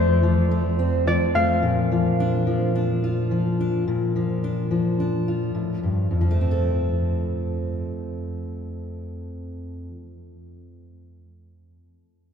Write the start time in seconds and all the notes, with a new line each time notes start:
Already playing: F2 F3 A3 C4 C5 D5 E5
0.23 F3
0.51 A3
0.79 C4
1.07 F3 D5
1.35 A3 F5
1.63 A#2
1.92 F3
2.20 D4
2.47 F3
2.75 D4
3.04 F4
3.31 F3
3.61 D4
3.88 A#2
4.16 F3
4.44 D4
4.71 F3
5.00 D4
5.28 F4
5.55 A2
5.83 G2
6.11 F2
6.21 F3
6.31 A3
6.41 C4
6.51 A4